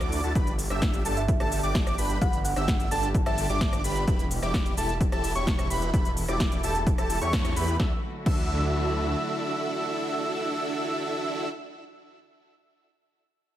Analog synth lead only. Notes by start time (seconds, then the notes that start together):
Already playing: D6
0.24 A6
0.35 B5
0.70 E6
1.05 A5
1.40 A5
1.63 D6
1.98 B5
2.22 B5
2.56 E6
2.91 A5
3.26 A5
3.49 D6
3.84 B5
4.08 B5
4.42 D6
4.77 A5
5.12 A5
5.35 C#6
5.70 B5
5.94 B5
6.29 D6
6.63 A5
6.98 A5
7.21 C#6
7.56 B5
7.80 E6
8.26 E6